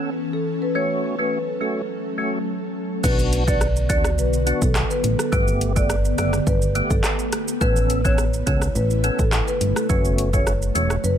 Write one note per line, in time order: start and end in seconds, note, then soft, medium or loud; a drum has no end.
0.00 0.73 E3 medium
0.00 0.71 B3 medium
0.00 0.10 C#4 medium
0.00 3.00 C#4 medium
0.00 0.10 A4 medium
0.00 3.00 A4 medium
0.33 0.41 A4 medium
0.62 0.70 B4 medium
0.75 3.02 F#3 medium
0.75 1.15 A3 medium
0.75 3.02 A3 medium
0.75 1.15 C#4 medium
0.75 1.16 F#4 loud
0.75 0.92 C#5 loud
1.19 1.38 A3 medium
1.19 1.39 C#4 medium
1.19 1.39 F#4 medium
1.19 1.36 B4 medium
1.61 1.81 A3 medium
1.61 1.82 C#4 medium
1.61 1.82 F#4 medium
1.61 1.78 A4 medium
2.18 2.39 A3 medium
2.18 2.39 C#4 medium
2.18 2.39 F#4 medium
3.03 3.91 B1 loud
3.03 7.57 D3 medium
3.03 5.30 F#3 medium
3.03 3.44 B3 medium
3.03 9.86 B3 medium
3.03 3.44 D4 medium
3.03 5.30 F#4 loud
3.03 3.44 F#4 loud
3.03 3.13 B4 loud
3.03 kick loud
3.03 crash loud
3.03 shaker medium
3.19 shaker medium
3.33 closed hi-hat medium
3.33 shaker medium
3.47 3.67 B3 medium
3.47 3.67 D4 medium
3.47 3.67 F#4 medium
3.47 3.56 D5 medium
3.47 kick medium
3.47 shaker medium
3.61 cross-stick loud
3.61 shaker medium
3.76 shaker medium
3.89 4.20 D2 medium
3.89 4.10 B3 medium
3.89 4.10 D4 medium
3.89 4.10 F#4 medium
3.89 3.99 D5 medium
3.89 kick loud
3.89 closed hi-hat medium
3.89 shaker medium
4.04 cross-stick loud
4.04 shaker medium
4.18 4.53 B1 loud
4.18 4.27 B4 medium
4.18 shaker medium
4.33 shaker medium
4.46 4.67 B3 medium
4.46 4.67 D4 medium
4.46 4.67 F#4 medium
4.46 closed hi-hat medium
4.46 shaker soft
4.62 4.85 B1 medium
4.62 4.70 A4 medium
4.62 kick medium
4.62 shaker medium
4.75 cross-stick loud
4.75 clap loud
4.75 shaker medium
4.90 4.98 B4 medium
4.90 shaker medium
5.04 5.16 A1 loud
5.04 closed hi-hat medium
5.04 shaker medium
5.19 5.27 A4 medium
5.19 cross-stick loud
5.19 shaker medium
5.32 6.14 G1 loud
5.32 5.72 A3 medium
5.32 11.18 A3 medium
5.32 5.73 B3 medium
5.32 7.59 G4 medium
5.32 5.73 G4 loud
5.32 5.42 B4 loud
5.32 kick loud
5.32 shaker medium
5.48 shaker medium
5.61 closed hi-hat medium
5.61 shaker medium
5.76 5.96 A3 medium
5.76 5.96 B3 medium
5.76 5.96 G4 medium
5.76 5.84 D5 medium
5.76 kick medium
5.76 shaker medium
5.90 cross-stick loud
5.90 shaker medium
6.05 shaker medium
6.18 6.41 F#1 medium
6.18 6.39 A3 medium
6.18 6.39 B3 medium
6.18 6.39 G4 medium
6.18 6.27 D5 medium
6.18 cross-stick loud
6.18 closed hi-hat medium
6.18 shaker medium
6.33 cross-stick medium
6.33 shaker medium
6.47 6.82 G1 loud
6.47 6.56 B4 medium
6.47 kick medium
6.47 shaker medium
6.62 shaker medium
6.75 6.96 A3 medium
6.75 6.96 B3 medium
6.75 6.96 G4 medium
6.75 closed hi-hat medium
6.75 shaker soft
6.90 7.01 G1 loud
6.90 6.99 A4 medium
6.90 kick medium
6.90 shaker medium
7.04 cross-stick loud
7.04 clap loud
7.04 shaker medium
7.19 shaker medium
7.33 cross-stick loud
7.33 closed hi-hat medium
7.33 shaker medium
7.48 shaker medium
7.61 8.43 A1 loud
7.61 11.18 C#3 medium
7.61 8.01 B3 loud
7.61 8.01 C#4 medium
7.61 9.87 E4 medium
7.61 8.01 A4 loud
7.61 7.70 B4 loud
7.61 kick loud
7.61 shaker medium
7.76 shaker medium
7.90 closed hi-hat medium
7.90 shaker medium
8.04 8.24 B3 medium
8.04 8.24 C#4 medium
8.04 8.24 A4 medium
8.04 8.13 C#5 medium
8.04 kick medium
8.04 shaker medium
8.18 cross-stick loud
8.18 shaker medium
8.34 shaker medium
8.47 8.70 C#2 loud
8.47 8.67 B3 medium
8.47 8.67 C#4 medium
8.47 8.68 A4 medium
8.47 8.56 C#5 medium
8.47 kick loud
8.47 closed hi-hat medium
8.47 shaker medium
8.62 cross-stick loud
8.62 shaker medium
8.75 9.10 A1 loud
8.75 8.85 B4 medium
8.75 shaker medium
8.90 shaker medium
9.04 9.24 B3 medium
9.04 9.24 C#4 medium
9.04 9.25 A4 medium
9.04 closed hi-hat medium
9.04 shaker soft
9.19 9.42 A1 medium
9.19 9.27 A4 medium
9.19 kick medium
9.19 shaker medium
9.32 cross-stick loud
9.32 clap loud
9.32 shaker medium
9.48 9.56 B4 medium
9.48 shaker medium
9.61 9.73 G1 loud
9.61 closed hi-hat medium
9.61 shaker medium
9.76 9.84 A4 medium
9.76 cross-stick loud
9.76 shaker medium
9.89 10.71 F#1 loud
9.89 11.18 F#3 medium
9.89 10.30 A3 loud
9.89 10.30 C#4 medium
9.89 11.18 F#4 medium
9.89 10.30 F#4 loud
9.89 9.99 B4 loud
9.89 kick loud
9.89 shaker medium
10.05 shaker medium
10.18 closed hi-hat medium
10.18 shaker medium
10.33 10.53 A3 medium
10.33 10.53 C#4 medium
10.33 10.53 F#4 medium
10.33 10.41 C#5 medium
10.33 kick medium
10.33 shaker medium
10.47 cross-stick loud
10.47 shaker medium
10.62 shaker medium
10.75 10.98 E1 loud
10.75 10.96 A3 medium
10.75 10.96 C#4 medium
10.75 10.96 F#4 medium
10.75 10.84 C#5 medium
10.75 closed hi-hat medium
10.75 shaker medium
10.90 cross-stick loud
10.90 shaker medium
11.04 11.18 F#1 loud
11.04 11.13 B4 medium
11.04 shaker medium